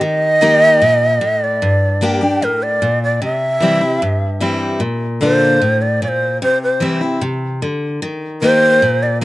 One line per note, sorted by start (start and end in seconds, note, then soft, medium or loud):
0.00 0.40 D#3 medium
0.00 1.45 D#5 loud
0.41 0.79 D#3 medium
0.41 0.80 A#3 medium
0.41 0.80 D#4 loud
0.41 0.80 G4 medium
0.82 1.20 A#2 medium
1.21 1.59 A2 medium
1.44 2.06 D5 loud
1.62 2.38 G2 medium
2.01 2.20 G3 medium
2.01 2.21 A#3 medium
2.01 2.21 D4 loud
2.01 2.20 G4 medium
2.01 2.45 G5 loud
2.21 2.41 D4 medium
2.21 2.40 G4 medium
2.42 2.80 A2 medium
2.42 2.64 A#4 medium
2.63 3.02 D5 medium
2.82 3.20 A#2 medium
3.04 3.21 D5 medium
3.22 3.98 C3 medium
3.22 4.59 E5 loud
3.60 3.80 E3 medium
3.60 3.81 G3 medium
3.60 3.81 C4 medium
3.60 3.80 E4 medium
3.81 4.01 C4 soft
3.81 4.00 E4 medium
4.02 4.78 G2 medium
4.40 4.79 E3 medium
4.40 4.79 G3 medium
4.40 4.79 C4 medium
4.40 4.80 E4 medium
4.80 5.57 A#2 medium
5.21 5.59 D3 medium
5.21 5.60 A#3 medium
5.21 5.60 D4 medium
5.21 5.60 F4 medium
5.21 5.83 C5 loud
5.62 6.00 A2 medium
5.82 6.01 D5 medium
6.02 6.40 A#2 medium
6.02 6.09 D5 medium
6.08 6.41 C5 medium
6.42 7.18 C3 medium
6.42 6.61 C5 loud
6.63 6.82 C5 medium
6.80 7.00 E3 medium
6.80 7.01 G3 medium
6.80 7.01 C4 medium
6.80 7.00 E4 medium
7.01 7.22 C4 soft
7.01 7.21 E4 medium
7.21 7.60 C3 medium
7.62 8.00 D3 medium
8.02 8.41 D#3 medium
8.42 8.80 D#3 medium
8.42 8.80 A#3 medium
8.42 8.81 D#4 medium
8.42 8.81 G4 medium
8.42 9.04 C5 loud
8.82 9.24 A#2 medium
9.03 9.22 D5 loud